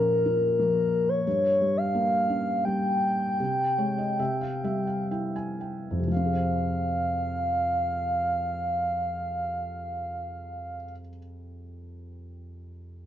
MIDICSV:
0, 0, Header, 1, 3, 480
1, 0, Start_track
1, 0, Key_signature, -4, "minor"
1, 0, Tempo, 685714
1, 883, Time_signature, 3, 2, 24, 8
1, 1858, Tempo, 744417
1, 2338, Tempo, 802139
1, 2818, Tempo, 903614
1, 3298, Tempo, 1011804
1, 3778, Tempo, 1041667
1, 5698, Tempo, 1061947
1, 6955, End_track
2, 0, Start_track
2, 0, Title_t, "Soft synth lead"
2, 0, Program_c, 0, 80
2, 0, Note_on_c, 0, 70, 86
2, 402, Note_off_c, 0, 70, 0
2, 406, Note_on_c, 0, 70, 83
2, 762, Note_on_c, 0, 73, 81
2, 772, Note_off_c, 0, 70, 0
2, 876, Note_off_c, 0, 73, 0
2, 880, Note_on_c, 0, 73, 89
2, 1240, Note_on_c, 0, 77, 101
2, 1251, Note_off_c, 0, 73, 0
2, 1851, Note_off_c, 0, 77, 0
2, 1855, Note_on_c, 0, 79, 100
2, 3275, Note_off_c, 0, 79, 0
2, 3775, Note_on_c, 0, 77, 75
2, 5996, Note_off_c, 0, 77, 0
2, 6955, End_track
3, 0, Start_track
3, 0, Title_t, "Felt piano"
3, 0, Program_c, 1, 0
3, 0, Control_c, 1, 64, 127
3, 0, Note_on_c, 1, 46, 53
3, 0, Note_on_c, 1, 53, 43
3, 0, Note_on_c, 1, 61, 50
3, 180, Note_on_c, 1, 65, 48
3, 405, Note_off_c, 1, 53, 0
3, 415, Note_on_c, 1, 53, 45
3, 854, Note_off_c, 1, 46, 0
3, 857, Note_off_c, 1, 61, 0
3, 864, Note_off_c, 1, 65, 0
3, 871, Note_off_c, 1, 53, 0
3, 889, Note_on_c, 1, 43, 54
3, 893, Control_c, 1, 64, 0
3, 995, Control_c, 1, 64, 127
3, 1128, Note_on_c, 1, 55, 44
3, 1362, Note_on_c, 1, 58, 54
3, 1606, Note_on_c, 1, 61, 45
3, 1850, Note_off_c, 1, 55, 0
3, 1860, Note_on_c, 1, 55, 39
3, 2311, Note_off_c, 1, 58, 0
3, 2314, Note_off_c, 1, 43, 0
3, 2315, Note_off_c, 1, 61, 0
3, 2324, Note_off_c, 1, 55, 0
3, 2338, Note_on_c, 1, 48, 58
3, 2344, Control_c, 1, 64, 0
3, 2465, Control_c, 1, 64, 127
3, 2566, Note_on_c, 1, 56, 42
3, 2568, Note_on_c, 1, 73, 51
3, 2682, Note_off_c, 1, 73, 0
3, 2688, Note_on_c, 1, 75, 52
3, 2803, Note_off_c, 1, 48, 0
3, 2806, Note_off_c, 1, 75, 0
3, 2807, Note_off_c, 1, 56, 0
3, 2814, Note_on_c, 1, 48, 56
3, 2814, Note_on_c, 1, 76, 58
3, 2823, Control_c, 1, 64, 0
3, 2922, Note_off_c, 1, 76, 0
3, 2924, Control_c, 1, 64, 127
3, 2930, Note_on_c, 1, 77, 56
3, 3040, Note_off_c, 1, 77, 0
3, 3052, Note_on_c, 1, 55, 43
3, 3053, Note_on_c, 1, 76, 59
3, 3164, Note_off_c, 1, 76, 0
3, 3174, Note_on_c, 1, 77, 46
3, 3290, Note_off_c, 1, 77, 0
3, 3301, Note_on_c, 1, 64, 40
3, 3302, Note_on_c, 1, 79, 47
3, 3408, Note_off_c, 1, 79, 0
3, 3418, Note_on_c, 1, 80, 55
3, 3536, Note_on_c, 1, 79, 42
3, 3678, Note_on_c, 1, 41, 45
3, 3713, Note_off_c, 1, 48, 0
3, 3720, Note_on_c, 1, 48, 35
3, 3759, Note_off_c, 1, 55, 0
3, 3760, Note_off_c, 1, 80, 0
3, 3760, Note_on_c, 1, 53, 41
3, 3765, Note_off_c, 1, 64, 0
3, 3772, Note_off_c, 1, 79, 0
3, 3783, Control_c, 1, 64, 0
3, 3799, Note_on_c, 1, 60, 41
3, 3836, Note_on_c, 1, 68, 39
3, 3871, Control_c, 1, 64, 127
3, 3876, Note_on_c, 1, 72, 44
3, 5905, Note_off_c, 1, 41, 0
3, 5944, Note_off_c, 1, 48, 0
3, 5982, Note_off_c, 1, 53, 0
3, 6020, Note_off_c, 1, 60, 0
3, 6056, Note_off_c, 1, 68, 0
3, 6095, Note_off_c, 1, 72, 0
3, 6955, End_track
0, 0, End_of_file